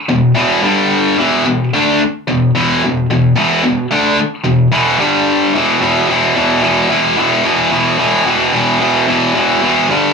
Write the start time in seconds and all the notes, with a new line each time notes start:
0.09 E2 B2
0.35 E2 B2 E3
0.62 G2 D3 G3
1.18 E2 B2 E3
1.46 E2 B2
1.74 D3 A3 D4
2.28 E2 B2
2.55 E2 B2 E3
2.83 E2 B2
3.10 E2 B2
3.36 E2 B2 E3
3.63 E2 B2
3.91 D3 A3 D4
4.44 E2 B2
4.72 E2 B2 E3
4.99 G2 D3 G3
5.54 E2 B2 E3
5.81 E2 B2 E3
6.08 E2 B2 E3
6.35 E2 B2 E3
6.62 E2 B2 E3
6.89 E2 B2 E3
7.17 E2 B2 E3
7.44 E2 B2 E3
7.71 E2 B2 E3
7.98 E2 B2 E3
8.25 E2 B2 E3
8.53 E2 B2 E3
8.80 E2 B2 E3
9.08 E2 B2 E3
9.34 E2 B2 E3
9.62 E2 B2 E3
9.89 G2 D3 G3